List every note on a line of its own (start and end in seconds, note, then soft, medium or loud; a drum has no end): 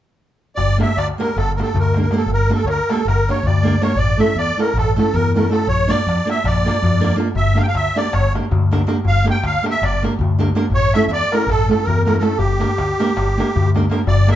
0.56 0.81 G1 medium
0.56 0.77 D5 medium
0.56 darbuka dum medium
0.70 darbuka tek soft
0.78 0.88 A#3 medium
0.78 0.89 D4 medium
0.78 0.89 G4 medium
0.78 0.89 A#4 medium
0.78 darbuka tek medium
0.82 0.98 E5 medium
0.90 darbuka tek soft
0.97 1.10 D2 medium
0.97 1.07 D5 medium
0.97 darbuka tek medium
1.18 1.28 A#3 medium
1.18 1.29 D4 soft
1.18 1.29 G4 medium
1.18 1.29 A#4 medium
1.18 1.37 A#4 medium
1.18 darbuka tek medium
1.30 darbuka tek soft
1.36 1.60 G1 loud
1.36 1.52 A4 medium
1.36 darbuka tek medium
1.36 darbuka dum medium
1.56 1.68 A#3 medium
1.56 1.68 D4 medium
1.56 1.60 A#4 medium
1.56 darbuka tek medium
1.60 1.69 G4 soft
1.60 1.78 A4 medium
1.60 1.69 A#4 medium
1.68 darbuka tek soft
1.74 2.06 D2 loud
1.74 darbuka dum medium
1.79 1.98 A#4 medium
1.85 darbuka tek soft
1.94 2.05 A#3 medium
1.94 2.05 D4 soft
1.94 2.06 G4 soft
1.94 2.06 A#4 medium
1.94 darbuka tek medium
2.01 2.15 A#4 medium
2.01 darbuka tek soft
2.11 2.21 A#3 medium
2.11 2.21 D4 medium
2.11 2.21 G4 soft
2.11 2.22 A#4 medium
2.11 darbuka tek medium
2.16 2.31 A4 medium
2.16 darbuka tek soft
2.26 2.50 G1 medium
2.26 darbuka dum medium
2.33 2.51 A#4 medium
2.40 darbuka tek soft
2.49 2.59 A#3 medium
2.49 2.60 D4 medium
2.49 2.60 G4 medium
2.49 2.60 A#4 medium
2.49 darbuka tek soft
2.55 2.65 A4 medium
2.59 darbuka tek soft
2.64 2.78 D2 medium
2.64 2.68 C#5 medium
2.64 darbuka tek medium
2.69 2.91 A#4 medium
2.89 2.99 A#3 medium
2.89 3.00 D4 medium
2.89 3.00 G4 medium
2.89 3.07 A4 medium
2.89 3.00 A#4 medium
2.89 darbuka tek medium
2.99 darbuka tek soft
3.05 3.29 G1 medium
3.05 3.29 A#4 medium
3.05 darbuka tek medium
3.05 darbuka dum medium
3.28 3.38 A#3 medium
3.28 3.38 D4 medium
3.28 3.38 G4 medium
3.28 3.39 A#4 medium
3.28 3.46 C#5 medium
3.28 darbuka tek medium
3.38 darbuka tek soft
3.43 3.75 D2 loud
3.43 3.83 D5 medium
3.43 darbuka dum medium
3.57 darbuka tek soft
3.63 3.73 A#3 medium
3.63 3.74 D4 medium
3.63 3.74 G4 medium
3.63 3.74 A#4 medium
3.67 darbuka tek soft
3.81 3.91 A#3 medium
3.81 3.91 D4 medium
3.81 3.91 G4 medium
3.81 3.91 A#4 medium
3.81 3.98 C#5 medium
3.81 darbuka tek medium
3.92 4.19 A1 medium
3.92 darbuka tek soft
3.97 4.20 D5 medium
3.97 darbuka dum medium
4.10 darbuka tek soft
4.17 4.28 A3 medium
4.17 4.29 C#4 medium
4.17 4.29 E4 medium
4.17 4.30 A4 medium
4.17 4.37 E5 medium
4.17 darbuka tek medium
4.31 darbuka tek soft
4.35 4.49 E2 medium
4.35 4.60 D5 loud
4.35 darbuka tek medium
4.57 4.67 A3 medium
4.57 4.68 C#4 soft
4.57 4.68 E4 medium
4.57 4.69 A4 medium
4.57 4.77 A#4 medium
4.57 darbuka tek medium
4.69 darbuka tek soft
4.74 4.98 A1 loud
4.74 4.97 A4 medium
4.74 darbuka tek medium
4.74 darbuka dum medium
4.96 5.07 A3 medium
4.96 5.07 C#4 medium
4.96 5.07 E4 medium
4.96 5.08 A4 medium
4.96 5.15 A4 medium
4.96 darbuka tek medium
5.08 darbuka tek soft
5.13 5.45 E2 loud
5.13 5.32 A#4 medium
5.13 darbuka dum medium
5.26 darbuka tek soft
5.34 5.44 A3 medium
5.34 5.44 C#4 medium
5.34 5.44 E4 soft
5.34 5.45 A4 medium
5.34 5.49 A#4 medium
5.34 darbuka tek medium
5.46 darbuka tek soft
5.50 5.59 A3 medium
5.50 5.60 C#4 medium
5.50 5.60 E4 medium
5.50 5.60 A4 medium
5.50 5.68 A4 medium
5.50 darbuka tek medium
5.62 darbuka tek soft
5.67 5.90 A#1 medium
5.67 5.90 C#5 loud
5.67 darbuka dum medium
5.81 darbuka tek soft
5.87 5.98 A#3 medium
5.87 5.98 D4 medium
5.87 5.98 F4 medium
5.87 5.98 A#4 medium
5.87 6.29 D5 medium
5.87 darbuka tek medium
6.00 darbuka tek soft
6.07 6.20 F2 medium
6.07 darbuka tek medium
6.18 darbuka tek soft
6.25 6.36 A#3 medium
6.25 6.36 D4 medium
6.25 6.37 F4 soft
6.25 6.37 A#4 medium
6.30 6.47 E5 medium
6.30 darbuka tek medium
6.38 darbuka tek soft
6.44 6.68 A#1 medium
6.44 7.16 D5 medium
6.44 darbuka tek medium
6.44 darbuka dum medium
6.56 darbuka tek soft
6.65 6.75 A#3 medium
6.65 6.76 D4 soft
6.65 6.76 F4 soft
6.65 6.76 A#4 medium
6.65 darbuka tek medium
6.76 darbuka tek soft
6.82 7.14 F2 medium
6.82 darbuka dum medium
6.95 darbuka tek soft
7.00 7.11 A#3 medium
7.00 7.11 D4 medium
7.00 7.11 F4 medium
7.00 7.11 A#4 medium
7.04 darbuka tek medium
7.12 darbuka tek soft
7.16 7.27 A#3 medium
7.16 7.27 D4 medium
7.16 7.28 F4 medium
7.16 7.28 A#4 medium
7.20 darbuka tek medium
7.28 darbuka tek soft
7.35 7.58 G1 medium
7.35 7.59 E5 medium
7.35 darbuka dum medium
7.48 darbuka tek soft
7.54 7.65 A#3 medium
7.54 7.66 D4 medium
7.54 7.66 G4 medium
7.54 7.66 A#4 medium
7.54 darbuka tek medium
7.58 7.62 F5 medium
7.62 7.66 G5 medium
7.67 7.75 F5 medium
7.67 darbuka tek soft
7.75 7.88 D2 medium
7.75 7.98 E5 medium
7.75 darbuka tek medium
7.95 8.05 A#3 medium
7.95 8.06 D4 medium
7.95 8.06 G4 soft
7.95 8.06 A#4 medium
7.95 8.14 D5 medium
7.95 darbuka tek medium
8.05 darbuka tek soft
8.12 8.37 G1 medium
8.12 8.33 C#5 medium
8.12 darbuka tek medium
8.12 darbuka dum medium
8.35 8.44 A#3 medium
8.35 8.45 D4 soft
8.35 8.45 G4 soft
8.35 8.45 A#4 medium
8.35 darbuka tek medium
8.43 darbuka tek soft
8.51 8.82 D2 medium
8.51 darbuka dum medium
8.62 darbuka tek soft
8.71 8.81 A#3 medium
8.71 8.81 D4 medium
8.71 8.81 G4 medium
8.71 8.81 A#4 medium
8.71 darbuka tek medium
8.79 darbuka tek soft
8.87 8.96 A#3 medium
8.87 8.97 D4 medium
8.87 8.97 G4 medium
8.87 8.97 A#4 medium
8.87 darbuka tek medium
8.97 darbuka tek soft
9.05 9.28 G1 medium
9.05 9.26 F5 loud
9.05 darbuka dum medium
9.17 darbuka tek soft
9.24 9.34 A#3 medium
9.24 9.35 D4 medium
9.24 9.35 G4 medium
9.24 9.35 A#4 medium
9.24 darbuka tek medium
9.30 9.45 G5 medium
9.36 darbuka tek soft
9.43 9.56 D2 medium
9.43 9.65 F5 medium
9.43 darbuka tek medium
9.62 9.73 A#3 medium
9.62 9.73 D4 soft
9.62 9.73 G4 medium
9.62 9.74 A#4 medium
9.62 darbuka tek medium
9.71 9.84 E5 medium
9.71 darbuka tek soft
9.81 10.05 G1 medium
9.81 10.03 D5 medium
9.81 darbuka tek medium
9.81 darbuka dum medium
10.02 10.12 A#3 medium
10.02 10.13 D4 medium
10.02 10.13 G4 soft
10.02 10.13 A#4 medium
10.02 darbuka tek medium
10.12 darbuka tek soft
10.19 10.50 D2 loud
10.19 darbuka dum medium
10.31 darbuka tek soft
10.38 10.48 A#3 medium
10.38 10.48 D4 medium
10.38 10.48 G4 medium
10.38 10.49 A#4 medium
10.38 darbuka tek medium
10.49 darbuka tek soft
10.55 10.64 A#3 medium
10.55 10.64 D4 medium
10.55 10.65 G4 medium
10.55 10.65 A#4 medium
10.55 darbuka tek medium
10.65 darbuka tek soft
10.70 10.94 A1 medium
10.70 darbuka dum medium
10.74 10.93 C#5 loud
10.83 darbuka tek soft
10.94 11.04 A3 medium
10.94 11.04 C#4 medium
10.94 11.04 E4 medium
10.94 11.04 A4 medium
10.94 11.05 E5 loud
10.94 darbuka tek medium
11.02 darbuka tek soft
11.07 11.21 E2 medium
11.07 11.11 E5 medium
11.07 darbuka tek medium
11.13 11.34 D5 loud
11.32 11.42 A3 soft
11.32 11.42 C#4 medium
11.32 11.42 E4 medium
11.32 11.42 A4 medium
11.32 11.49 A#4 medium
11.32 darbuka tek medium
11.41 darbuka tek soft
11.46 11.70 A1 medium
11.46 11.69 A4 loud
11.46 darbuka tek medium
11.46 darbuka dum medium
11.68 11.79 A3 medium
11.68 11.79 C#4 soft
11.68 11.79 E4 medium
11.68 11.80 A4 medium
11.68 11.86 A4 medium
11.68 darbuka tek medium
11.81 12.03 A#4 medium
11.81 darbuka tek soft
11.87 12.18 E2 medium
11.87 darbuka dum medium
11.97 darbuka tek soft
12.04 12.15 A3 medium
12.04 12.16 C#4 soft
12.04 12.16 E4 soft
12.04 12.16 A4 medium
12.04 12.16 A#4 medium
12.04 darbuka tek medium
12.15 12.22 A#4 soft
12.15 darbuka tek soft
12.20 12.31 A3 medium
12.20 12.31 C#4 medium
12.20 12.32 E4 medium
12.20 12.38 A4 medium
12.20 12.32 A4 medium
12.20 darbuka tek medium
12.31 darbuka tek soft
12.37 12.62 G1 medium
12.37 13.70 G4 medium
12.37 darbuka dum medium
12.59 12.70 A#3 medium
12.59 12.70 D4 medium
12.59 12.70 G4 medium
12.59 12.71 A#4 medium
12.59 darbuka tek medium
12.78 12.92 D2 medium
12.78 darbuka tek medium
12.89 darbuka tek soft
12.99 13.09 A#3 medium
12.99 13.10 D4 medium
12.99 13.09 G4 medium
12.99 13.10 A#4 medium
12.99 darbuka tek medium
13.09 darbuka tek soft
13.17 13.40 G1 medium
13.17 darbuka tek medium
13.29 darbuka tek soft
13.37 13.47 A#3 medium
13.37 13.48 D4 medium
13.37 13.48 G4 medium
13.37 13.49 A#4 medium
13.37 darbuka tek medium
13.48 darbuka tek soft
13.56 13.86 D2 medium
13.56 darbuka dum medium
13.67 darbuka tek soft
13.75 13.84 A#3 medium
13.75 13.84 D4 medium
13.75 13.84 G4 medium
13.75 13.85 A#4 medium
13.75 darbuka tek medium
13.90 13.99 A#3 medium
13.90 14.00 D4 medium
13.90 14.00 G4 medium
13.90 14.01 A#4 medium
13.90 darbuka tek medium
13.99 darbuka tek soft
14.06 14.30 G1 medium
14.06 14.30 D5 medium
14.06 darbuka dum medium
14.19 darbuka tek soft
14.27 14.36 A#3 medium
14.27 14.36 D4 soft
14.27 14.36 G4 medium
14.27 14.36 A#4 medium
14.27 darbuka tek medium
14.31 14.36 E5 loud